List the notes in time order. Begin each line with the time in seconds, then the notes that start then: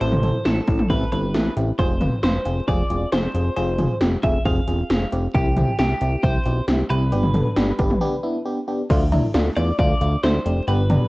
0.01 A1 C4 E4 A4 C5, closed hi-hat
0.12 mid tom
0.23 C4 E4 A4, closed hi-hat, mid tom
0.45 A1 C4 E4 A4, snare, closed hi-hat
0.68 A1 C4 E4 A4, kick, closed hi-hat
0.79 mid tom
0.90 A1 C4 E4 A4 B4, kick, closed hi-hat
1.12 G1 C4 E4 A4 B4, closed hi-hat
1.34 A1 C4 E4 A4, snare, closed hi-hat
1.57 A1 C4 E4 G4, closed hi-hat
1.79 F1 C4 F4 G#4 C5, kick, closed hi-hat
2.01 C4 F4 B4, closed hi-hat, mid tom
2.23 F1 C4 F4 B4 C5, snare, closed hi-hat
2.45 F1 C4 F4 G#4, closed hi-hat
2.68 F1 C4 F4 G#4 D5, kick, closed hi-hat
2.90 E1 C4 F4 G#4, closed hi-hat
3.12 F1 C4 F4 G#4 C5, snare, closed hi-hat
3.34 F1 C4 F4 G#4, closed hi-hat
3.57 F1 C4 F4 G#4 C5, closed hi-hat
3.79 C4 F4 G#4, closed hi-hat, mid tom
4.01 F1 C4 F4 G4, snare, closed hi-hat
4.23 F1 C4 F4 G#4 E5, kick, closed hi-hat
4.45 F1 C4 F4 G#4 F5, kick, closed hi-hat
4.68 E1 C4 F4 G#4, closed hi-hat
4.90 F1 C4 F4 G#4, snare, closed hi-hat
5.12 F1 C4 F4 G4, closed hi-hat
5.34 C2 C4 E4 G4, kick, closed hi-hat
5.56 C4 E4 G4, closed hi-hat, mid tom
5.79 C2 C4 E4 G4, snare, closed hi-hat
6.01 C2 C4 E4 G4, closed hi-hat
6.23 C2 C4 E4 G4 C5, kick, closed hi-hat
6.46 B1 C4 E4 G4, closed hi-hat
6.68 C2 C4 E4 G4, snare, closed hi-hat
6.90 C2 C4 E4 G4 B4, closed hi-hat
7.12 G1 B3 D4 G4, closed hi-hat
7.23 mid tom
7.34 B3 D4 A4, closed hi-hat, mid tom
7.57 G1 B3 D4 G4, snare, closed hi-hat
7.79 G1 B3 D4 G4, kick, closed hi-hat
7.90 mid tom
8.01 B3 D4 G4
8.23 B3 D4 E4
8.46 B3 D4 G4
8.68 B3 D4 G4
8.90 D2 A3 D4 F4, kick, closed hi-hat, crash
9.12 A3 D4 E4, closed hi-hat, mid tom, cowbell
9.34 D2 A3 D4 F4, snare, closed hi-hat
9.57 E2 A3 D4 F4 D5, closed hi-hat
9.79 D2 A3 D4 F4 D5, kick, closed hi-hat
10.01 D2 A3 D4 F4, closed hi-hat
10.23 D2 A3 D4 E4 C5, snare, closed hi-hat
10.45 F1 A3 D4 G4, closed hi-hat
10.68 G1 B3 D4 G4 B4, closed hi-hat
10.90 B3 D4 G4, closed hi-hat, mid tom, cowbell